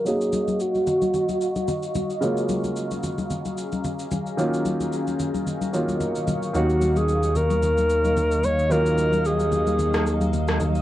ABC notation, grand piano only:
X:1
M:4/4
L:1/8
Q:"Swing 16ths" 1/4=111
K:Ebm
V:1 name="Grand piano"
[G,B,DEf]8 | [D,G,A,B,DF]8 | [^D,^F,^A,^C^E]4- [D,F,A,CE] [D,F,A,CE]3 | [E,G,B,Df]8 |
[E,G,B,DF]8 |]